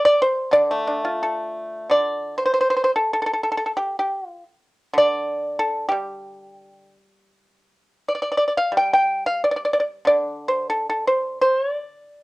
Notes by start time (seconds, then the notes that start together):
0.05 D5
0.22 C5
0.51 D3 D5
0.71 A3
0.87 D4
1.05 F4
1.23 A4
1.90 D3 D5
2.38 C5
2.46 C5
2.54 C5
2.61 C5
2.70 C5
2.77 C5
2.84 C5
2.96 A4
3.13 A4
3.22 A4
3.26 A4
3.33 A4
3.43 A4
3.52 A4
3.57 A4
3.66 A4
3.77 G4
3.99 G4
4.27 F4
4.93 D3
4.98 D5
5.59 A4
5.89 G3 G4
8.08 D5
8.15 D5
8.22 D5
8.32 D5
8.37 D5
8.48 D5
8.57 F5
8.72 G3
8.77 G5
8.93 G5
9.26 F5
9.44 D5
9.51 D5
9.56 D5
9.65 D5
9.73 D5
9.80 D5
10.05 D3 D5
10.48 C5
10.70 A4
10.89 A4
11.07 C5
11.41 C5
11.71 D5